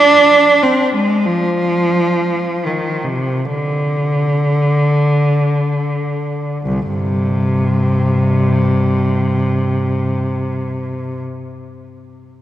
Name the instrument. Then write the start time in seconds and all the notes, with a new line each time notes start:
cello
Already playing: D4
0.62 C4
0.95 G#3
1.25 F3
2.66 D#3
3.04 C3
3.45 D3
6.65 C2
6.89 G2 C3